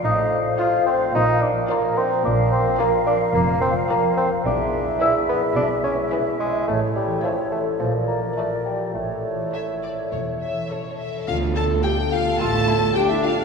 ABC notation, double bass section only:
X:1
M:4/4
L:1/8
Q:1/4=108
K:Bb
V:1 name="Double bass section" clef=bass
A,,,2 z2 B,,,2 z2 | [K:Dm] B,,,2 z2 F,,,2 z2 | =B,,,2 z2 B,,,2 z2 | A,,,2 z2 B,,,2 z2 |
A,,,2 z2 E,,,2 z2 | D,,2 z2 A,,,2 z2 |]